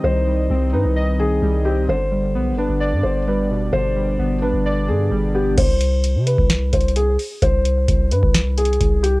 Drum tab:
CC |------------------------------------------------|------------------------------------------------|------------------------------------------------|x-----------------------------------------------|
HH |------------------------------------------------|------------------------------------------------|------------------------------------------------|x-----x-----x-----x-----x-----x-x-x-x-----o-----|
SD |------------------------------------------------|------------------------------------------------|------------------------------------------------|------------------------o-----------------------|
BD |------------------------------------------------|------------------------------------------------|------------------------------------------------|o--------------------o--------o-----------------|

CC |------------------------------------------------|
HH |x-----x-----x-----x-----x-----x-x-x-x-----x-----|
SD |------------------------o-----------------------|
BD |o-----------o--------o--------------o-----------|